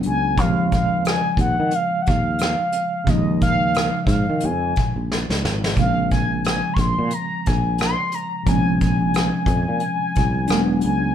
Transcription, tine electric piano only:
0.00 0.38 F#3 soft
0.00 0.39 G#3 soft
0.00 0.39 B3 medium
0.00 0.37 D4 medium
0.35 3.02 C#3 medium
0.35 3.03 F3 medium
0.41 0.46 G3 soft
0.41 3.06 C4 medium
0.47 3.08 G#3 medium
3.04 5.71 C#3 medium
3.04 5.73 F3 medium
3.10 5.74 G#3 medium
3.10 5.76 D#4 medium
5.74 5.83 C3 soft
5.74 8.42 F3 medium
5.79 8.44 C#3 medium
5.79 8.44 G#3 medium
5.79 8.45 C4 medium
8.43 8.52 C3 soft
8.43 10.45 F3 medium
8.49 10.46 G#3 soft
8.49 10.47 C4 medium
8.49 10.46 C#4 medium
10.48 11.15 F#3 medium
10.48 11.15 G#3 medium
10.48 11.15 D4 medium
10.52 10.58 A#3 medium
10.59 11.15 B3 medium

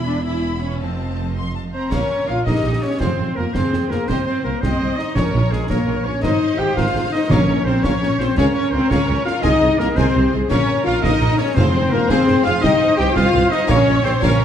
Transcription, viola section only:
0.08 0.26 D4 medium
0.26 0.62 E4 medium
0.63 0.81 C#4 medium
0.81 1.37 C4 medium
1.93 2.43 A#4 medium
2.47 3.00 G4 medium
3.01 3.55 F4 medium
3.55 4.08 G#4 medium
4.09 4.63 C5 medium
4.63 5.15 D#5 medium
5.16 5.69 A#4 medium
5.71 6.23 C#5 medium
6.24 7.29 C5 medium
7.32 7.84 A#4 medium
7.84 8.37 C#5 medium
8.38 9.42 A#4 medium
9.44 9.97 G#4 medium
9.98 10.05 G#4 medium
10.15 10.32 G4 medium
10.33 10.51 G#4 medium
10.50 11.57 A#4 loud
11.57 12.09 C5 loud
12.10 12.64 G#4 medium
12.63 13.68 C5 loud
13.70 14.23 C#5 loud
14.23 14.45 A#4 loud

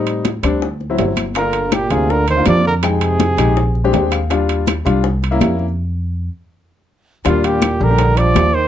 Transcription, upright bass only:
0.00 0.38 A2 medium
0.43 0.95 D2 medium
0.99 1.85 G1 medium
1.90 2.42 D2 medium
2.46 3.33 F2 medium
3.37 3.89 A#1 medium
3.93 4.80 D#2 medium
4.86 5.37 C2 medium
5.41 6.27 F2 medium
7.25 7.77 D#2 medium
7.81 8.32 A#1 medium
8.35 8.68 D#2 medium

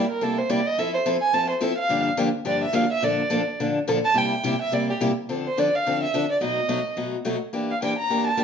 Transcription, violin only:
0.10 0.24 A#4 medium
0.22 0.40 A4 medium
0.38 0.52 C5 medium
0.50 0.68 D5 medium
0.66 0.80 D#5 loud
0.79 0.93 E5 medium
0.94 1.01 C5 medium
1.21 1.35 G#5 medium
1.34 1.49 A5 loud
1.50 1.64 C5 soft
1.63 1.78 E5 medium
1.79 2.04 F5 loud
2.46 2.61 D5 medium
2.64 2.76 E5 medium
2.75 2.91 F5 medium
2.92 3.06 E5 loud
3.04 3.59 D5 medium
4.05 4.19 A5 loud
4.17 4.61 G5 medium
4.62 4.75 E5 medium
4.74 4.89 D5 medium
4.90 4.96 G4 medium
5.47 5.61 C5 medium
5.59 5.77 D5 medium
5.75 6.02 F5 loud
6.04 6.28 E5 medium
6.31 6.41 D5 medium
6.44 6.95 D#5 medium
7.70 7.81 F5 medium
7.83 7.98 G5 medium
7.99 8.25 A#5 medium
8.27 8.44 A5 medium

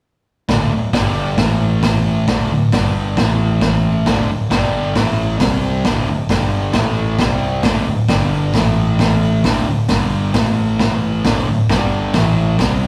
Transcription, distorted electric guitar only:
0.49 0.71 D2 loud
0.49 0.71 A2 loud
0.49 0.72 D3 loud
0.72 0.93 D2 medium
0.72 0.90 A2 medium
0.93 1.38 G2 loud
0.93 1.38 D3 loud
0.93 1.39 G3 loud
1.38 2.27 A2 loud
1.38 2.28 E3 medium
1.38 2.28 A3 loud
2.28 2.50 D2 medium
2.28 2.50 A2 loud
2.28 2.50 D3 loud
2.52 2.69 D2 medium
2.52 2.69 A2 medium
2.73 3.17 G2 medium
2.73 3.18 D3 medium
2.73 3.18 G3 loud
3.18 4.06 A2 medium
3.18 4.07 E3 loud
3.18 4.07 A3 loud
4.08 4.29 D2 loud
4.08 4.29 A2 medium
4.08 4.30 D3 loud
4.30 4.50 D2 medium
4.30 4.48 A2 medium
4.50 4.95 G2 loud
4.50 4.96 D3 loud
4.50 4.96 G3 loud
4.96 5.41 A2 medium
4.96 5.42 E3 loud
4.96 5.42 A3 loud
5.41 5.85 C3 loud
5.41 5.86 G3 loud
5.41 5.86 C4 loud
5.85 6.08 D2 loud
5.85 6.07 A2 loud
5.85 6.08 D3 loud
6.09 6.27 D2 medium
6.09 6.27 A2 medium
6.30 6.74 G2 loud
6.30 6.75 D3 loud
6.30 6.75 G3 loud
6.75 7.19 A2 medium
6.75 7.20 E3 loud
6.75 7.20 A3 loud
7.20 7.63 C3 medium
7.20 7.65 G3 medium
7.20 7.65 C4 loud
7.64 7.86 D2 loud
7.64 7.86 A2 loud
7.64 7.88 D3 loud
7.87 8.06 D2 medium
7.87 8.06 A2 medium
8.09 8.53 G2 loud
8.09 8.54 D3 loud
8.09 8.55 G3 loud
8.54 9.44 A2 medium
8.54 9.44 E3 loud
8.54 9.45 A3 loud
9.44 9.67 D2 loud
9.44 9.67 A2 loud
9.44 9.67 D3 loud
9.69 9.86 D2 medium
9.69 9.86 A2 medium
9.89 10.35 G2 medium
9.89 10.36 D3 loud
9.89 10.36 G3 loud
10.35 11.24 A2 medium
10.35 11.24 E3 loud
10.35 11.25 A3 loud
11.25 11.47 D2 loud
11.25 11.47 A2 loud
11.25 11.47 D3 loud
11.49 11.66 D2 medium
11.49 11.66 A2 medium
11.70 12.14 G2 medium
11.70 12.15 D3 loud
11.70 12.15 G3 loud
12.15 12.60 A2 medium
12.15 12.60 E3 loud
12.15 12.62 A3 medium
12.60 12.87 C3 medium
12.60 12.87 G3 loud
12.60 12.87 C4 medium

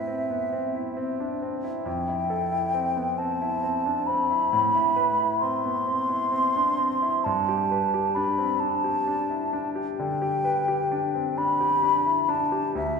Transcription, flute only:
0.00 1.41 E5 medium
1.85 3.20 G5 medium
3.18 4.08 A5 medium
4.07 5.39 B5 medium
5.40 7.26 C6 medium
7.24 8.16 A5 medium
8.15 8.61 B5 medium
8.60 9.70 A5 medium
9.98 11.39 G5 medium
11.38 12.31 B5 medium
12.30 12.75 A5 medium
12.76 13.00 E5 medium

